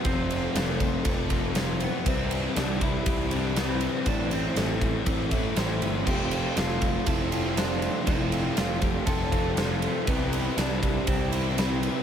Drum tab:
CC |--------|--------|--------|x-------|
RD |xxxxxxxx|xxxxxxxx|xxxxxxxx|-xxxxxxx|
SD |--o---o-|--o---o-|--o---o-|--o---o-|
BD |o--ooo--|o--oo---|o--ooo--|o--oo---|

CC |--------|--------|
RD |xxxxxxxx|xxxxxxxx|
SD |--o---o-|--o---o-|
BD |o--ooo--|o--oo---|